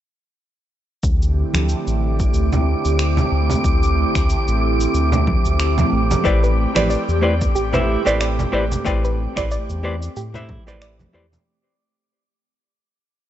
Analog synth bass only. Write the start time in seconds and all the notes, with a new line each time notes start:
1.03 D2
1.55 D2
1.87 A1
2.34 D2
2.85 D2
3.32 D2
3.64 D2
4.15 D2
4.48 A1
4.94 D2
5.45 D2
5.92 A1
6.25 A1
6.76 A1
7.09 E2
7.55 A1
8.06 A1
8.53 A1
8.86 A1
9.37 A1
9.70 E2
10.17 A2
10.68 A1
11.14 E2